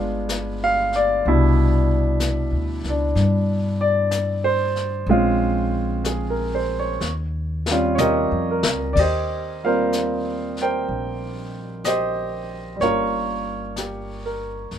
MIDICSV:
0, 0, Header, 1, 4, 480
1, 0, Start_track
1, 0, Tempo, 953895
1, 629, Time_signature, 4, 2, 24, 8
1, 2069, Tempo, 969305
1, 4469, Tempo, 958466
1, 7389, End_track
2, 0, Start_track
2, 0, Title_t, "Grand piano"
2, 0, Program_c, 0, 0
2, 0, Control_c, 0, 64, 127
2, 0, Note_on_c, 0, 56, 61
2, 0, Note_on_c, 0, 59, 52
2, 0, Note_on_c, 0, 62, 54
2, 0, Note_on_c, 0, 65, 64
2, 321, Note_on_c, 0, 77, 90
2, 470, Note_off_c, 0, 77, 0
2, 481, Note_on_c, 0, 74, 73
2, 627, Note_off_c, 0, 56, 0
2, 630, Note_off_c, 0, 59, 0
2, 632, Note_off_c, 0, 62, 0
2, 636, Control_c, 0, 64, 0
2, 638, Note_off_c, 0, 65, 0
2, 638, Note_on_c, 0, 55, 57
2, 639, Note_off_c, 0, 74, 0
2, 640, Note_on_c, 0, 47, 54
2, 640, Note_on_c, 0, 62, 55
2, 644, Note_on_c, 0, 64, 67
2, 719, Control_c, 0, 64, 127
2, 1448, Note_off_c, 0, 62, 0
2, 1455, Note_on_c, 0, 62, 52
2, 1916, Note_on_c, 0, 74, 74
2, 2213, Note_off_c, 0, 74, 0
2, 2233, Note_on_c, 0, 72, 79
2, 2551, Note_off_c, 0, 55, 0
2, 2552, Note_off_c, 0, 47, 0
2, 2552, Control_c, 0, 64, 0
2, 2554, Note_off_c, 0, 64, 0
2, 2555, Note_on_c, 0, 56, 59
2, 2557, Note_off_c, 0, 62, 0
2, 2557, Note_on_c, 0, 60, 51
2, 2561, Note_on_c, 0, 61, 53
2, 2562, Note_on_c, 0, 65, 65
2, 2635, Control_c, 0, 64, 127
2, 2957, Note_off_c, 0, 72, 0
2, 3035, Note_on_c, 0, 68, 44
2, 3154, Note_on_c, 0, 70, 49
2, 3258, Note_off_c, 0, 68, 0
2, 3275, Note_on_c, 0, 72, 54
2, 3358, Note_off_c, 0, 70, 0
2, 3397, Note_on_c, 0, 73, 54
2, 3417, Note_off_c, 0, 72, 0
2, 3509, Note_off_c, 0, 56, 0
2, 3510, Note_off_c, 0, 60, 0
2, 3512, Note_off_c, 0, 61, 0
2, 3512, Control_c, 0, 64, 0
2, 3513, Note_off_c, 0, 65, 0
2, 3559, Note_off_c, 0, 73, 0
2, 3603, Control_c, 0, 64, 127
2, 3846, Note_on_c, 0, 55, 52
2, 3849, Note_on_c, 0, 61, 47
2, 3850, Note_on_c, 0, 60, 49
2, 3854, Note_on_c, 0, 65, 61
2, 3970, Note_on_c, 0, 73, 61
2, 3987, Note_on_c, 0, 75, 76
2, 3990, Note_off_c, 0, 73, 0
2, 3995, Note_on_c, 0, 70, 53
2, 3998, Note_on_c, 0, 67, 53
2, 4240, Note_off_c, 0, 70, 0
2, 4248, Note_on_c, 0, 70, 50
2, 4426, Note_off_c, 0, 75, 0
2, 4454, Note_off_c, 0, 67, 0
2, 4456, Note_on_c, 0, 74, 73
2, 4473, Note_off_c, 0, 74, 0
2, 4474, Note_off_c, 0, 55, 0
2, 4475, Control_c, 0, 64, 0
2, 4476, Note_off_c, 0, 60, 0
2, 4476, Note_off_c, 0, 61, 0
2, 4478, Note_off_c, 0, 65, 0
2, 4485, Note_on_c, 0, 75, 74
2, 4488, Note_on_c, 0, 67, 51
2, 4491, Note_on_c, 0, 72, 51
2, 4550, Control_c, 0, 64, 127
2, 4578, Note_off_c, 0, 70, 0
2, 4808, Note_on_c, 0, 55, 46
2, 4812, Note_off_c, 0, 72, 0
2, 4812, Note_on_c, 0, 58, 40
2, 4813, Note_on_c, 0, 77, 68
2, 4815, Note_off_c, 0, 75, 0
2, 4818, Note_on_c, 0, 60, 42
2, 4818, Note_on_c, 0, 65, 45
2, 4819, Note_on_c, 0, 70, 52
2, 4820, Note_on_c, 0, 72, 54
2, 5295, Note_off_c, 0, 70, 0
2, 5296, Note_off_c, 0, 72, 0
2, 5300, Note_on_c, 0, 79, 70
2, 5302, Note_off_c, 0, 77, 0
2, 5302, Note_on_c, 0, 70, 52
2, 5304, Note_on_c, 0, 72, 52
2, 5421, Note_off_c, 0, 67, 0
2, 5750, Note_off_c, 0, 79, 0
2, 5917, Note_on_c, 0, 75, 79
2, 5919, Note_off_c, 0, 72, 0
2, 5927, Note_on_c, 0, 72, 56
2, 5928, Note_on_c, 0, 67, 61
2, 6234, Note_off_c, 0, 70, 0
2, 6364, Note_off_c, 0, 55, 0
2, 6372, Note_on_c, 0, 55, 42
2, 6377, Note_off_c, 0, 75, 0
2, 6382, Note_off_c, 0, 67, 0
2, 6382, Note_off_c, 0, 72, 0
2, 6387, Note_off_c, 0, 58, 0
2, 6394, Note_on_c, 0, 58, 38
2, 6398, Note_on_c, 0, 73, 84
2, 6400, Note_off_c, 0, 65, 0
2, 6400, Control_c, 0, 64, 0
2, 6405, Note_off_c, 0, 60, 0
2, 6406, Note_on_c, 0, 70, 53
2, 6407, Note_on_c, 0, 65, 55
2, 6410, Note_on_c, 0, 61, 41
2, 6422, Note_off_c, 0, 65, 0
2, 6429, Note_on_c, 0, 65, 47
2, 6491, Control_c, 0, 64, 127
2, 6884, Note_on_c, 0, 67, 38
2, 7115, Note_off_c, 0, 70, 0
2, 7123, Note_on_c, 0, 70, 41
2, 7260, Note_off_c, 0, 67, 0
2, 7332, Note_off_c, 0, 73, 0
2, 7339, Note_off_c, 0, 55, 0
2, 7350, Note_off_c, 0, 58, 0
2, 7356, Control_c, 0, 64, 0
2, 7358, Note_off_c, 0, 61, 0
2, 7367, Note_off_c, 0, 65, 0
2, 7389, Note_off_c, 0, 70, 0
2, 7389, End_track
3, 0, Start_track
3, 0, Title_t, "Upright bass"
3, 0, Program_c, 1, 32
3, 0, Note_on_c, 1, 31, 81
3, 609, Note_off_c, 1, 31, 0
3, 632, Note_on_c, 1, 36, 79
3, 1249, Note_off_c, 1, 36, 0
3, 1267, Note_on_c, 1, 38, 59
3, 1416, Note_off_c, 1, 38, 0
3, 1430, Note_on_c, 1, 37, 70
3, 1578, Note_off_c, 1, 37, 0
3, 1587, Note_on_c, 1, 43, 84
3, 2527, Note_off_c, 1, 43, 0
3, 2541, Note_on_c, 1, 34, 89
3, 3482, Note_off_c, 1, 34, 0
3, 3502, Note_on_c, 1, 39, 86
3, 4128, Note_off_c, 1, 39, 0
3, 4151, Note_on_c, 1, 41, 69
3, 4299, Note_off_c, 1, 41, 0
3, 4315, Note_on_c, 1, 37, 70
3, 4460, Note_off_c, 1, 37, 0
3, 4470, Note_on_c, 1, 39, 66
3, 5412, Note_off_c, 1, 39, 0
3, 5434, Note_on_c, 1, 34, 67
3, 6376, Note_off_c, 1, 34, 0
3, 6392, Note_on_c, 1, 31, 68
3, 7329, Note_off_c, 1, 31, 0
3, 7353, Note_on_c, 1, 30, 66
3, 7389, Note_off_c, 1, 30, 0
3, 7389, End_track
4, 0, Start_track
4, 0, Title_t, "Drums"
4, 146, Note_on_c, 9, 25, 32
4, 146, Note_on_c, 9, 38, 53
4, 146, Note_on_c, 9, 44, 54
4, 196, Note_off_c, 9, 38, 0
4, 196, Note_off_c, 9, 44, 0
4, 465, Note_on_c, 9, 38, 27
4, 515, Note_off_c, 9, 38, 0
4, 625, Note_off_c, 9, 25, 0
4, 625, Note_on_c, 9, 25, 37
4, 1107, Note_off_c, 9, 25, 0
4, 1107, Note_on_c, 9, 25, 39
4, 1107, Note_on_c, 9, 38, 46
4, 1107, Note_on_c, 9, 44, 53
4, 1157, Note_off_c, 9, 38, 0
4, 1157, Note_off_c, 9, 44, 0
4, 1429, Note_on_c, 9, 38, 30
4, 1480, Note_off_c, 9, 38, 0
4, 1590, Note_off_c, 9, 25, 0
4, 1590, Note_on_c, 9, 25, 36
4, 1590, Note_on_c, 9, 38, 31
4, 1640, Note_off_c, 9, 38, 0
4, 2069, Note_off_c, 9, 25, 0
4, 2069, Note_on_c, 9, 25, 39
4, 2069, Note_on_c, 9, 38, 52
4, 2069, Note_on_c, 9, 44, 66
4, 2119, Note_off_c, 9, 38, 0
4, 2119, Note_off_c, 9, 44, 0
4, 2388, Note_on_c, 9, 38, 28
4, 2438, Note_off_c, 9, 38, 0
4, 2547, Note_off_c, 9, 25, 0
4, 2547, Note_on_c, 9, 25, 32
4, 3026, Note_off_c, 9, 25, 0
4, 3026, Note_on_c, 9, 25, 42
4, 3026, Note_on_c, 9, 38, 51
4, 3026, Note_on_c, 9, 44, 60
4, 3076, Note_off_c, 9, 38, 0
4, 3076, Note_off_c, 9, 44, 0
4, 3505, Note_on_c, 9, 38, 48
4, 3554, Note_off_c, 9, 38, 0
4, 3736, Note_off_c, 9, 25, 0
4, 3827, Note_on_c, 9, 38, 66
4, 3876, Note_off_c, 9, 38, 0
4, 3986, Note_on_c, 9, 44, 61
4, 3986, Note_on_c, 9, 48, 66
4, 4035, Note_off_c, 9, 44, 0
4, 4035, Note_off_c, 9, 48, 0
4, 4307, Note_on_c, 9, 38, 98
4, 4356, Note_off_c, 9, 38, 0
4, 4468, Note_on_c, 9, 36, 52
4, 4472, Note_on_c, 9, 25, 25
4, 4472, Note_on_c, 9, 49, 51
4, 4518, Note_off_c, 9, 36, 0
4, 4522, Note_off_c, 9, 49, 0
4, 4954, Note_off_c, 9, 25, 0
4, 4954, Note_on_c, 9, 25, 27
4, 4954, Note_on_c, 9, 38, 34
4, 4954, Note_on_c, 9, 44, 45
4, 5004, Note_off_c, 9, 38, 0
4, 5004, Note_off_c, 9, 44, 0
4, 5274, Note_on_c, 9, 38, 26
4, 5324, Note_off_c, 9, 38, 0
4, 5432, Note_off_c, 9, 25, 0
4, 5432, Note_on_c, 9, 25, 30
4, 5914, Note_off_c, 9, 25, 0
4, 5914, Note_on_c, 9, 25, 30
4, 5914, Note_on_c, 9, 38, 40
4, 5914, Note_on_c, 9, 44, 50
4, 5964, Note_off_c, 9, 38, 0
4, 5964, Note_off_c, 9, 44, 0
4, 6395, Note_off_c, 9, 25, 0
4, 6395, Note_on_c, 9, 25, 24
4, 6395, Note_on_c, 9, 38, 24
4, 6445, Note_off_c, 9, 38, 0
4, 6875, Note_off_c, 9, 25, 0
4, 6875, Note_on_c, 9, 25, 34
4, 6875, Note_on_c, 9, 38, 40
4, 6875, Note_on_c, 9, 44, 48
4, 6925, Note_off_c, 9, 38, 0
4, 6925, Note_off_c, 9, 44, 0
4, 7349, Note_off_c, 9, 25, 0
4, 7349, Note_on_c, 9, 25, 31
4, 7349, Note_on_c, 9, 38, 27
4, 7389, Note_off_c, 9, 25, 0
4, 7389, Note_off_c, 9, 38, 0
4, 7389, End_track
0, 0, End_of_file